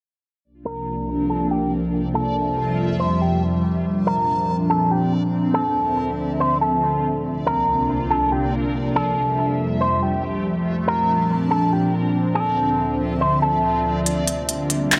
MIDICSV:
0, 0, Header, 1, 5, 480
1, 0, Start_track
1, 0, Tempo, 425532
1, 503, Time_signature, 4, 2, 24, 8
1, 16914, End_track
2, 0, Start_track
2, 0, Title_t, "Synth texture"
2, 0, Program_c, 0, 99
2, 503, Note_on_c, 0, 70, 70
2, 504, Note_on_c, 0, 60, 80
2, 504, Note_on_c, 0, 65, 72
2, 504, Note_on_c, 0, 74, 84
2, 2404, Note_off_c, 0, 60, 0
2, 2404, Note_off_c, 0, 70, 0
2, 2404, Note_off_c, 0, 74, 0
2, 2420, Note_on_c, 0, 81, 73
2, 2421, Note_on_c, 0, 55, 81
2, 2421, Note_on_c, 0, 76, 85
2, 4305, Note_off_c, 0, 65, 0
2, 4322, Note_off_c, 0, 76, 0
2, 4323, Note_off_c, 0, 55, 0
2, 4341, Note_on_c, 0, 60, 82
2, 4341, Note_on_c, 0, 70, 75
2, 4342, Note_on_c, 0, 74, 87
2, 6223, Note_off_c, 0, 81, 0
2, 6243, Note_off_c, 0, 70, 0
2, 6243, Note_off_c, 0, 74, 0
2, 6261, Note_on_c, 0, 65, 76
2, 6262, Note_on_c, 0, 74, 89
2, 8184, Note_on_c, 0, 70, 69
2, 10057, Note_off_c, 0, 60, 0
2, 10064, Note_off_c, 0, 74, 0
2, 10084, Note_off_c, 0, 70, 0
2, 10103, Note_on_c, 0, 57, 83
2, 10105, Note_on_c, 0, 67, 73
2, 10105, Note_on_c, 0, 76, 87
2, 11977, Note_off_c, 0, 65, 0
2, 12004, Note_off_c, 0, 57, 0
2, 12005, Note_off_c, 0, 67, 0
2, 12005, Note_off_c, 0, 76, 0
2, 12024, Note_on_c, 0, 60, 76
2, 12024, Note_on_c, 0, 70, 70
2, 12024, Note_on_c, 0, 74, 85
2, 12024, Note_on_c, 0, 81, 73
2, 13924, Note_off_c, 0, 70, 0
2, 13924, Note_off_c, 0, 74, 0
2, 13924, Note_off_c, 0, 81, 0
2, 13944, Note_on_c, 0, 65, 73
2, 13944, Note_on_c, 0, 74, 88
2, 15825, Note_off_c, 0, 60, 0
2, 15844, Note_off_c, 0, 65, 0
2, 15844, Note_off_c, 0, 74, 0
2, 15863, Note_on_c, 0, 62, 80
2, 15863, Note_on_c, 0, 70, 74
2, 15864, Note_on_c, 0, 77, 86
2, 16914, Note_off_c, 0, 62, 0
2, 16914, Note_off_c, 0, 70, 0
2, 16914, Note_off_c, 0, 77, 0
2, 16914, End_track
3, 0, Start_track
3, 0, Title_t, "Clean electric guitar"
3, 0, Program_c, 1, 27
3, 743, Note_on_c, 1, 70, 78
3, 1420, Note_off_c, 1, 70, 0
3, 1461, Note_on_c, 1, 69, 68
3, 1690, Note_off_c, 1, 69, 0
3, 1703, Note_on_c, 1, 67, 79
3, 1931, Note_off_c, 1, 67, 0
3, 2426, Note_on_c, 1, 69, 93
3, 3339, Note_off_c, 1, 69, 0
3, 3379, Note_on_c, 1, 72, 75
3, 3609, Note_off_c, 1, 72, 0
3, 3628, Note_on_c, 1, 67, 73
3, 3854, Note_off_c, 1, 67, 0
3, 4589, Note_on_c, 1, 70, 76
3, 5263, Note_off_c, 1, 70, 0
3, 5300, Note_on_c, 1, 69, 78
3, 5529, Note_off_c, 1, 69, 0
3, 5541, Note_on_c, 1, 67, 87
3, 5770, Note_off_c, 1, 67, 0
3, 6249, Note_on_c, 1, 69, 89
3, 7171, Note_off_c, 1, 69, 0
3, 7223, Note_on_c, 1, 72, 81
3, 7451, Note_off_c, 1, 72, 0
3, 7459, Note_on_c, 1, 69, 72
3, 8138, Note_off_c, 1, 69, 0
3, 8421, Note_on_c, 1, 70, 81
3, 9099, Note_off_c, 1, 70, 0
3, 9141, Note_on_c, 1, 69, 70
3, 9370, Note_off_c, 1, 69, 0
3, 9386, Note_on_c, 1, 67, 80
3, 9613, Note_off_c, 1, 67, 0
3, 10108, Note_on_c, 1, 69, 99
3, 11020, Note_off_c, 1, 69, 0
3, 11062, Note_on_c, 1, 72, 76
3, 11290, Note_off_c, 1, 72, 0
3, 11309, Note_on_c, 1, 67, 73
3, 11534, Note_off_c, 1, 67, 0
3, 12270, Note_on_c, 1, 70, 76
3, 12943, Note_off_c, 1, 70, 0
3, 12981, Note_on_c, 1, 69, 78
3, 13210, Note_off_c, 1, 69, 0
3, 13229, Note_on_c, 1, 67, 86
3, 13454, Note_off_c, 1, 67, 0
3, 13931, Note_on_c, 1, 69, 91
3, 14852, Note_off_c, 1, 69, 0
3, 14901, Note_on_c, 1, 72, 78
3, 15130, Note_off_c, 1, 72, 0
3, 15139, Note_on_c, 1, 69, 71
3, 15818, Note_off_c, 1, 69, 0
3, 16914, End_track
4, 0, Start_track
4, 0, Title_t, "Ambient pad"
4, 0, Program_c, 2, 92
4, 502, Note_on_c, 2, 62, 88
4, 503, Note_on_c, 2, 48, 74
4, 504, Note_on_c, 2, 36, 81
4, 504, Note_on_c, 2, 53, 75
4, 505, Note_on_c, 2, 58, 76
4, 2403, Note_off_c, 2, 62, 0
4, 2404, Note_off_c, 2, 36, 0
4, 2404, Note_off_c, 2, 48, 0
4, 2405, Note_off_c, 2, 58, 0
4, 2422, Note_on_c, 2, 41, 86
4, 2422, Note_on_c, 2, 76, 94
4, 2424, Note_on_c, 2, 55, 75
4, 4323, Note_off_c, 2, 41, 0
4, 4324, Note_off_c, 2, 55, 0
4, 4324, Note_off_c, 2, 76, 0
4, 4343, Note_on_c, 2, 62, 91
4, 4344, Note_on_c, 2, 46, 87
4, 4344, Note_on_c, 2, 60, 78
4, 6244, Note_off_c, 2, 46, 0
4, 6244, Note_off_c, 2, 62, 0
4, 6262, Note_on_c, 2, 38, 82
4, 6263, Note_on_c, 2, 76, 92
4, 6264, Note_on_c, 2, 50, 78
4, 8145, Note_off_c, 2, 60, 0
4, 8163, Note_off_c, 2, 38, 0
4, 8164, Note_off_c, 2, 50, 0
4, 8164, Note_off_c, 2, 76, 0
4, 8184, Note_on_c, 2, 36, 83
4, 8184, Note_on_c, 2, 48, 77
4, 8185, Note_on_c, 2, 58, 76
4, 8185, Note_on_c, 2, 62, 92
4, 10058, Note_off_c, 2, 53, 0
4, 10084, Note_off_c, 2, 36, 0
4, 10084, Note_off_c, 2, 48, 0
4, 10085, Note_off_c, 2, 58, 0
4, 10085, Note_off_c, 2, 62, 0
4, 10103, Note_on_c, 2, 41, 82
4, 10103, Note_on_c, 2, 53, 73
4, 10103, Note_on_c, 2, 55, 80
4, 10103, Note_on_c, 2, 76, 92
4, 12003, Note_off_c, 2, 41, 0
4, 12004, Note_off_c, 2, 55, 0
4, 12004, Note_off_c, 2, 76, 0
4, 12021, Note_on_c, 2, 62, 91
4, 12022, Note_on_c, 2, 46, 83
4, 12022, Note_on_c, 2, 60, 76
4, 13922, Note_off_c, 2, 62, 0
4, 13923, Note_off_c, 2, 46, 0
4, 13944, Note_on_c, 2, 50, 80
4, 13945, Note_on_c, 2, 76, 94
4, 13946, Note_on_c, 2, 38, 84
4, 15818, Note_off_c, 2, 53, 0
4, 15824, Note_off_c, 2, 60, 0
4, 15844, Note_off_c, 2, 50, 0
4, 15845, Note_off_c, 2, 38, 0
4, 15845, Note_off_c, 2, 76, 0
4, 15862, Note_on_c, 2, 55, 77
4, 15863, Note_on_c, 2, 48, 84
4, 15863, Note_on_c, 2, 58, 80
4, 15863, Note_on_c, 2, 65, 89
4, 15864, Note_on_c, 2, 62, 77
4, 16914, Note_off_c, 2, 48, 0
4, 16914, Note_off_c, 2, 55, 0
4, 16914, Note_off_c, 2, 58, 0
4, 16914, Note_off_c, 2, 62, 0
4, 16914, Note_off_c, 2, 65, 0
4, 16914, End_track
5, 0, Start_track
5, 0, Title_t, "Drums"
5, 15863, Note_on_c, 9, 42, 65
5, 15976, Note_off_c, 9, 42, 0
5, 16102, Note_on_c, 9, 42, 72
5, 16215, Note_off_c, 9, 42, 0
5, 16342, Note_on_c, 9, 42, 72
5, 16454, Note_off_c, 9, 42, 0
5, 16581, Note_on_c, 9, 42, 68
5, 16694, Note_off_c, 9, 42, 0
5, 16822, Note_on_c, 9, 42, 79
5, 16831, Note_on_c, 9, 39, 98
5, 16914, Note_off_c, 9, 39, 0
5, 16914, Note_off_c, 9, 42, 0
5, 16914, End_track
0, 0, End_of_file